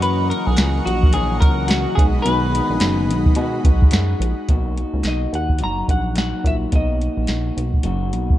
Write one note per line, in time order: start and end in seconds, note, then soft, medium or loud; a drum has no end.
0.00 0.33 F#2 loud
0.00 1.12 F#2 medium
0.00 1.12 C#3 medium
0.00 1.12 E3 medium
0.00 1.13 A#3 medium
0.00 1.13 C#4 medium
0.00 1.15 F#4 medium
0.00 1.95 A#4 medium
0.00 0.30 B4 loud
0.00 1.93 D#5 medium
0.00 4.46 F#5 medium
0.00 1.96 C#6 medium
0.00 closed hi-hat medium
0.30 0.47 A#4 medium
0.30 closed hi-hat medium
0.47 0.56 B1 medium
0.47 0.87 G#4 loud
0.57 0.81 C#2 loud
0.57 snare loud
0.57 clap medium
0.57 closed hi-hat medium
0.86 1.44 A#1 medium
0.86 1.12 F#4 medium
0.86 closed hi-hat medium
1.03 kick loud
1.13 1.97 F#2 medium
1.13 1.97 C#3 medium
1.13 1.97 E3 medium
1.13 1.98 A#3 medium
1.13 1.98 C#4 medium
1.13 1.97 F#4 medium
1.13 1.40 G#4 loud
1.13 closed hi-hat medium
1.40 1.87 C#2 medium
1.40 1.70 A#4 loud
1.40 kick loud
1.40 closed hi-hat medium
1.68 1.98 F#4 medium
1.68 snare loud
1.68 clap medium
1.68 closed hi-hat medium
1.95 2.20 B1 loud
1.95 2.26 D#4 soft
1.95 2.26 F#4 soft
1.95 2.03 G#4 medium
1.95 4.46 G#4 medium
1.95 4.46 D#5 medium
1.95 4.46 B5 medium
1.95 kick loud
1.95 closed hi-hat medium
2.00 2.26 G#3 soft
2.22 2.61 B1 loud
2.22 3.35 B2 medium
2.22 3.36 D#3 medium
2.22 3.45 B4 medium
2.22 closed hi-hat medium
2.27 3.36 G#3 medium
2.27 3.37 D#4 loud
2.27 3.38 F#4 loud
2.55 closed hi-hat medium
2.70 2.79 A#1 medium
2.80 3.11 F#1 loud
2.80 snare loud
2.80 clap medium
2.80 closed hi-hat medium
3.09 3.32 B1 loud
3.09 closed hi-hat medium
3.26 kick medium
3.35 3.65 B2 medium
3.35 3.59 B2 loud
3.35 3.65 D#3 medium
3.35 3.65 G#3 loud
3.35 3.64 D#4 medium
3.35 3.62 F#4 loud
3.35 closed hi-hat medium
3.45 4.15 A#4 medium
3.64 3.87 B1 loud
3.64 4.49 G#3 soft
3.64 4.50 D#4 medium
3.64 4.50 F#4 medium
3.64 kick loud
3.64 closed hi-hat medium
3.82 kick loud
3.91 4.15 F#2 loud
3.91 snare loud
3.91 clap medium
3.91 closed hi-hat loud
4.20 4.34 A#1 medium
4.20 closed hi-hat medium
4.49 4.85 B1 loud
4.49 4.77 B2 medium
4.49 4.77 F#3 medium
4.49 4.77 A#3 medium
4.49 4.76 D#4 medium
4.49 4.75 F#4 medium
4.49 kick loud
4.49 closed hi-hat medium
4.76 5.59 A#3 soft
4.76 5.61 D#4 soft
4.76 5.60 F#4 soft
4.76 closed hi-hat medium
4.94 5.03 C#2 medium
5.04 5.27 B1 medium
5.04 5.32 D#5 medium
5.04 snare medium
5.04 clap medium
5.04 closed hi-hat medium
5.33 5.62 D#2 medium
5.33 5.60 F#5 medium
5.33 closed hi-hat medium
5.49 kick medium
5.59 5.83 F#1 medium
5.59 6.14 F#3 soft
5.59 6.15 A#3 soft
5.59 6.16 D#4 medium
5.59 6.17 F#4 medium
5.59 closed hi-hat medium
5.64 5.90 A#5 loud
5.88 6.33 A#1 medium
5.88 6.17 F#5 medium
5.88 kick medium
5.88 closed hi-hat medium
6.15 6.71 F#3 medium
6.15 6.72 A#3 medium
6.15 6.72 D#4 medium
6.15 6.72 F#4 medium
6.15 6.46 F#5 medium
6.15 snare medium
6.15 clap medium
6.15 closed hi-hat medium
6.44 6.67 A#1 loud
6.44 6.55 E5 medium
6.44 kick medium
6.44 closed hi-hat medium
6.72 7.09 B1 medium
6.72 7.00 B2 medium
6.72 7.01 F#3 medium
6.72 7.00 A#3 medium
6.72 6.99 D#4 medium
6.72 6.98 F#4 medium
6.72 7.82 D#5 medium
6.72 kick loud
6.72 closed hi-hat medium
6.99 7.83 A#3 soft
6.99 7.84 D#4 soft
6.99 7.84 F#4 soft
6.99 closed hi-hat soft
7.17 7.26 A#1 medium
7.27 7.51 A#1 medium
7.27 snare medium
7.27 clap medium
7.27 closed hi-hat medium
7.57 7.79 B1 medium
7.57 closed hi-hat medium
7.74 kick medium
7.83 8.13 F#1 medium
7.83 8.39 F#3 medium
7.83 8.39 A#3 medium
7.83 8.39 D#4 medium
7.83 8.39 F#4 medium
7.83 closed hi-hat medium
8.12 8.35 B1 medium
8.12 closed hi-hat medium
8.30 kick medium